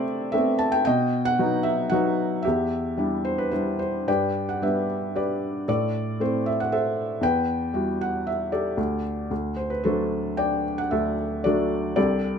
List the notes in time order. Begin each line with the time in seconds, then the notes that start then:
Already playing: C3 A3 C4 A4 C5 D5 E5
0.32 A3 B3 C4 E5
0.59 A5
0.72 G5
0.85 B2 D#5 G5
1.25 F#5
1.39 F#3 B3 D#4
1.63 E5
1.90 F#3 B3 D#4 F#5
2.43 G4 E5
2.47 E2
2.97 G3 D4 E4
3.25 C5
3.38 B4
3.51 G3 D4 E4 C5
3.79 C5
4.08 G2 B4 D5 G5
4.49 F#5
4.62 G3 B3 D4 G4 B4 E5
5.15 G4 B4 D5
5.68 A2 A4 D5
6.20 A3 C4 E4 C5
6.46 E5
6.60 F#5
6.72 A4 C5 E5
7.21 E2 B4 G5
7.74 G3 E4 F#4
8.01 F#5
8.27 E5
8.52 G4 A4 D5
8.77 D2
9.31 D2
9.57 C5
9.70 B4
9.84 F#3 A3 D4 F#4 A4 C5
10.37 D5 G5
10.78 F#5
10.91 D2 A4 E5
11.44 F#3 A3 D4 F#4 A4 D5
11.96 C2 G4 A4 D5